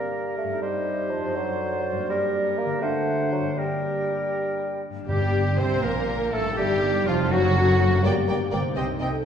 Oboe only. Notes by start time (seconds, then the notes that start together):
Already playing: A#4
0.63 C5
2.10 A#4
2.83 C5
3.58 A#4
5.08 G4
5.59 C5
5.83 A#4
6.33 A4
6.57 G4
7.06 F4
7.31 F#4
8.06 D5
8.29 D5
8.53 D5
8.77 D#5
9.02 D#5